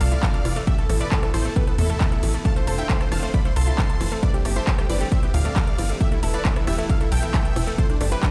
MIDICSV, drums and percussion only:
0, 0, Header, 1, 2, 480
1, 0, Start_track
1, 0, Key_signature, 0, "minor"
1, 0, Tempo, 444444
1, 727, Time_signature, 4, 2, 24, 8
1, 8973, End_track
2, 0, Start_track
2, 0, Title_t, "Drums"
2, 7, Note_on_c, 9, 46, 111
2, 7, Note_on_c, 9, 51, 75
2, 115, Note_off_c, 9, 46, 0
2, 115, Note_off_c, 9, 51, 0
2, 127, Note_on_c, 9, 42, 51
2, 235, Note_off_c, 9, 42, 0
2, 247, Note_on_c, 9, 36, 127
2, 247, Note_on_c, 9, 39, 123
2, 247, Note_on_c, 9, 42, 81
2, 355, Note_off_c, 9, 36, 0
2, 355, Note_off_c, 9, 39, 0
2, 355, Note_off_c, 9, 42, 0
2, 367, Note_on_c, 9, 42, 51
2, 475, Note_off_c, 9, 42, 0
2, 487, Note_on_c, 9, 37, 62
2, 487, Note_on_c, 9, 46, 101
2, 487, Note_on_c, 9, 51, 75
2, 595, Note_off_c, 9, 37, 0
2, 595, Note_off_c, 9, 46, 0
2, 595, Note_off_c, 9, 51, 0
2, 607, Note_on_c, 9, 42, 51
2, 715, Note_off_c, 9, 42, 0
2, 727, Note_on_c, 9, 36, 123
2, 727, Note_on_c, 9, 42, 77
2, 835, Note_off_c, 9, 36, 0
2, 835, Note_off_c, 9, 42, 0
2, 847, Note_on_c, 9, 42, 50
2, 955, Note_off_c, 9, 42, 0
2, 967, Note_on_c, 9, 37, 64
2, 967, Note_on_c, 9, 46, 111
2, 967, Note_on_c, 9, 51, 78
2, 1075, Note_off_c, 9, 37, 0
2, 1075, Note_off_c, 9, 46, 0
2, 1075, Note_off_c, 9, 51, 0
2, 1087, Note_on_c, 9, 42, 49
2, 1195, Note_off_c, 9, 42, 0
2, 1206, Note_on_c, 9, 39, 121
2, 1206, Note_on_c, 9, 42, 77
2, 1207, Note_on_c, 9, 36, 125
2, 1314, Note_off_c, 9, 39, 0
2, 1314, Note_off_c, 9, 42, 0
2, 1315, Note_off_c, 9, 36, 0
2, 1327, Note_on_c, 9, 37, 83
2, 1327, Note_on_c, 9, 42, 52
2, 1435, Note_off_c, 9, 37, 0
2, 1435, Note_off_c, 9, 42, 0
2, 1447, Note_on_c, 9, 37, 80
2, 1447, Note_on_c, 9, 46, 100
2, 1447, Note_on_c, 9, 51, 79
2, 1555, Note_off_c, 9, 37, 0
2, 1555, Note_off_c, 9, 46, 0
2, 1555, Note_off_c, 9, 51, 0
2, 1567, Note_on_c, 9, 42, 52
2, 1675, Note_off_c, 9, 42, 0
2, 1687, Note_on_c, 9, 36, 123
2, 1687, Note_on_c, 9, 42, 77
2, 1795, Note_off_c, 9, 36, 0
2, 1795, Note_off_c, 9, 42, 0
2, 1807, Note_on_c, 9, 42, 53
2, 1915, Note_off_c, 9, 42, 0
2, 1927, Note_on_c, 9, 46, 106
2, 1927, Note_on_c, 9, 51, 73
2, 2035, Note_off_c, 9, 46, 0
2, 2035, Note_off_c, 9, 51, 0
2, 2047, Note_on_c, 9, 42, 51
2, 2155, Note_off_c, 9, 42, 0
2, 2167, Note_on_c, 9, 36, 127
2, 2167, Note_on_c, 9, 39, 122
2, 2167, Note_on_c, 9, 42, 79
2, 2275, Note_off_c, 9, 36, 0
2, 2275, Note_off_c, 9, 39, 0
2, 2275, Note_off_c, 9, 42, 0
2, 2287, Note_on_c, 9, 42, 49
2, 2395, Note_off_c, 9, 42, 0
2, 2407, Note_on_c, 9, 46, 98
2, 2407, Note_on_c, 9, 51, 77
2, 2515, Note_off_c, 9, 46, 0
2, 2515, Note_off_c, 9, 51, 0
2, 2527, Note_on_c, 9, 42, 52
2, 2635, Note_off_c, 9, 42, 0
2, 2647, Note_on_c, 9, 36, 121
2, 2647, Note_on_c, 9, 42, 77
2, 2755, Note_off_c, 9, 36, 0
2, 2755, Note_off_c, 9, 42, 0
2, 2767, Note_on_c, 9, 42, 52
2, 2875, Note_off_c, 9, 42, 0
2, 2887, Note_on_c, 9, 46, 108
2, 2887, Note_on_c, 9, 51, 80
2, 2995, Note_off_c, 9, 46, 0
2, 2995, Note_off_c, 9, 51, 0
2, 3007, Note_on_c, 9, 42, 51
2, 3115, Note_off_c, 9, 42, 0
2, 3127, Note_on_c, 9, 36, 125
2, 3127, Note_on_c, 9, 39, 122
2, 3127, Note_on_c, 9, 42, 80
2, 3235, Note_off_c, 9, 36, 0
2, 3235, Note_off_c, 9, 39, 0
2, 3235, Note_off_c, 9, 42, 0
2, 3247, Note_on_c, 9, 37, 81
2, 3247, Note_on_c, 9, 42, 51
2, 3355, Note_off_c, 9, 37, 0
2, 3355, Note_off_c, 9, 42, 0
2, 3367, Note_on_c, 9, 37, 84
2, 3367, Note_on_c, 9, 46, 92
2, 3367, Note_on_c, 9, 51, 81
2, 3475, Note_off_c, 9, 37, 0
2, 3475, Note_off_c, 9, 46, 0
2, 3475, Note_off_c, 9, 51, 0
2, 3487, Note_on_c, 9, 42, 52
2, 3595, Note_off_c, 9, 42, 0
2, 3607, Note_on_c, 9, 36, 121
2, 3607, Note_on_c, 9, 42, 78
2, 3715, Note_off_c, 9, 36, 0
2, 3715, Note_off_c, 9, 42, 0
2, 3727, Note_on_c, 9, 42, 52
2, 3835, Note_off_c, 9, 42, 0
2, 3847, Note_on_c, 9, 46, 107
2, 3847, Note_on_c, 9, 51, 78
2, 3955, Note_off_c, 9, 46, 0
2, 3955, Note_off_c, 9, 51, 0
2, 3967, Note_on_c, 9, 42, 53
2, 4075, Note_off_c, 9, 42, 0
2, 4087, Note_on_c, 9, 36, 119
2, 4087, Note_on_c, 9, 39, 114
2, 4087, Note_on_c, 9, 42, 79
2, 4195, Note_off_c, 9, 36, 0
2, 4195, Note_off_c, 9, 39, 0
2, 4195, Note_off_c, 9, 42, 0
2, 4207, Note_on_c, 9, 42, 50
2, 4315, Note_off_c, 9, 42, 0
2, 4327, Note_on_c, 9, 37, 65
2, 4327, Note_on_c, 9, 46, 94
2, 4327, Note_on_c, 9, 51, 80
2, 4435, Note_off_c, 9, 37, 0
2, 4435, Note_off_c, 9, 46, 0
2, 4435, Note_off_c, 9, 51, 0
2, 4447, Note_on_c, 9, 42, 51
2, 4555, Note_off_c, 9, 42, 0
2, 4567, Note_on_c, 9, 36, 112
2, 4567, Note_on_c, 9, 42, 81
2, 4675, Note_off_c, 9, 36, 0
2, 4675, Note_off_c, 9, 42, 0
2, 4687, Note_on_c, 9, 42, 53
2, 4795, Note_off_c, 9, 42, 0
2, 4807, Note_on_c, 9, 37, 67
2, 4807, Note_on_c, 9, 46, 106
2, 4807, Note_on_c, 9, 51, 84
2, 4915, Note_off_c, 9, 37, 0
2, 4915, Note_off_c, 9, 46, 0
2, 4915, Note_off_c, 9, 51, 0
2, 4927, Note_on_c, 9, 42, 51
2, 5035, Note_off_c, 9, 42, 0
2, 5047, Note_on_c, 9, 36, 117
2, 5047, Note_on_c, 9, 39, 122
2, 5047, Note_on_c, 9, 42, 81
2, 5155, Note_off_c, 9, 36, 0
2, 5155, Note_off_c, 9, 39, 0
2, 5155, Note_off_c, 9, 42, 0
2, 5167, Note_on_c, 9, 37, 84
2, 5167, Note_on_c, 9, 42, 54
2, 5275, Note_off_c, 9, 37, 0
2, 5275, Note_off_c, 9, 42, 0
2, 5287, Note_on_c, 9, 46, 87
2, 5287, Note_on_c, 9, 51, 84
2, 5395, Note_off_c, 9, 46, 0
2, 5395, Note_off_c, 9, 51, 0
2, 5407, Note_on_c, 9, 42, 54
2, 5515, Note_off_c, 9, 42, 0
2, 5527, Note_on_c, 9, 36, 116
2, 5528, Note_on_c, 9, 42, 84
2, 5635, Note_off_c, 9, 36, 0
2, 5636, Note_off_c, 9, 42, 0
2, 5648, Note_on_c, 9, 42, 53
2, 5756, Note_off_c, 9, 42, 0
2, 5768, Note_on_c, 9, 46, 99
2, 5768, Note_on_c, 9, 51, 80
2, 5876, Note_off_c, 9, 46, 0
2, 5876, Note_off_c, 9, 51, 0
2, 5887, Note_on_c, 9, 42, 53
2, 5995, Note_off_c, 9, 42, 0
2, 6007, Note_on_c, 9, 36, 118
2, 6007, Note_on_c, 9, 39, 117
2, 6007, Note_on_c, 9, 42, 82
2, 6115, Note_off_c, 9, 36, 0
2, 6115, Note_off_c, 9, 39, 0
2, 6115, Note_off_c, 9, 42, 0
2, 6127, Note_on_c, 9, 42, 54
2, 6235, Note_off_c, 9, 42, 0
2, 6247, Note_on_c, 9, 46, 91
2, 6247, Note_on_c, 9, 51, 83
2, 6355, Note_off_c, 9, 46, 0
2, 6355, Note_off_c, 9, 51, 0
2, 6367, Note_on_c, 9, 42, 52
2, 6475, Note_off_c, 9, 42, 0
2, 6487, Note_on_c, 9, 36, 112
2, 6487, Note_on_c, 9, 42, 82
2, 6595, Note_off_c, 9, 36, 0
2, 6595, Note_off_c, 9, 42, 0
2, 6607, Note_on_c, 9, 42, 55
2, 6715, Note_off_c, 9, 42, 0
2, 6726, Note_on_c, 9, 46, 104
2, 6726, Note_on_c, 9, 51, 84
2, 6834, Note_off_c, 9, 46, 0
2, 6834, Note_off_c, 9, 51, 0
2, 6847, Note_on_c, 9, 42, 53
2, 6955, Note_off_c, 9, 42, 0
2, 6967, Note_on_c, 9, 36, 119
2, 6967, Note_on_c, 9, 39, 122
2, 6967, Note_on_c, 9, 42, 85
2, 7075, Note_off_c, 9, 36, 0
2, 7075, Note_off_c, 9, 39, 0
2, 7075, Note_off_c, 9, 42, 0
2, 7087, Note_on_c, 9, 37, 82
2, 7087, Note_on_c, 9, 42, 56
2, 7195, Note_off_c, 9, 37, 0
2, 7195, Note_off_c, 9, 42, 0
2, 7207, Note_on_c, 9, 37, 79
2, 7207, Note_on_c, 9, 46, 88
2, 7207, Note_on_c, 9, 51, 84
2, 7315, Note_off_c, 9, 37, 0
2, 7315, Note_off_c, 9, 46, 0
2, 7315, Note_off_c, 9, 51, 0
2, 7327, Note_on_c, 9, 42, 57
2, 7435, Note_off_c, 9, 42, 0
2, 7447, Note_on_c, 9, 36, 114
2, 7447, Note_on_c, 9, 42, 84
2, 7555, Note_off_c, 9, 36, 0
2, 7555, Note_off_c, 9, 42, 0
2, 7567, Note_on_c, 9, 42, 56
2, 7675, Note_off_c, 9, 42, 0
2, 7687, Note_on_c, 9, 46, 101
2, 7687, Note_on_c, 9, 51, 84
2, 7795, Note_off_c, 9, 46, 0
2, 7795, Note_off_c, 9, 51, 0
2, 7807, Note_on_c, 9, 42, 56
2, 7915, Note_off_c, 9, 42, 0
2, 7927, Note_on_c, 9, 36, 114
2, 7927, Note_on_c, 9, 39, 120
2, 7927, Note_on_c, 9, 42, 85
2, 8035, Note_off_c, 9, 36, 0
2, 8035, Note_off_c, 9, 39, 0
2, 8035, Note_off_c, 9, 42, 0
2, 8047, Note_on_c, 9, 42, 55
2, 8155, Note_off_c, 9, 42, 0
2, 8167, Note_on_c, 9, 37, 65
2, 8167, Note_on_c, 9, 46, 92
2, 8167, Note_on_c, 9, 51, 87
2, 8275, Note_off_c, 9, 37, 0
2, 8275, Note_off_c, 9, 46, 0
2, 8275, Note_off_c, 9, 51, 0
2, 8287, Note_on_c, 9, 42, 54
2, 8395, Note_off_c, 9, 42, 0
2, 8407, Note_on_c, 9, 36, 115
2, 8407, Note_on_c, 9, 42, 84
2, 8515, Note_off_c, 9, 36, 0
2, 8515, Note_off_c, 9, 42, 0
2, 8527, Note_on_c, 9, 42, 54
2, 8635, Note_off_c, 9, 42, 0
2, 8647, Note_on_c, 9, 37, 62
2, 8647, Note_on_c, 9, 46, 107
2, 8647, Note_on_c, 9, 51, 82
2, 8755, Note_off_c, 9, 37, 0
2, 8755, Note_off_c, 9, 46, 0
2, 8755, Note_off_c, 9, 51, 0
2, 8767, Note_on_c, 9, 42, 55
2, 8875, Note_off_c, 9, 42, 0
2, 8887, Note_on_c, 9, 36, 120
2, 8887, Note_on_c, 9, 39, 123
2, 8887, Note_on_c, 9, 42, 85
2, 8973, Note_off_c, 9, 36, 0
2, 8973, Note_off_c, 9, 39, 0
2, 8973, Note_off_c, 9, 42, 0
2, 8973, End_track
0, 0, End_of_file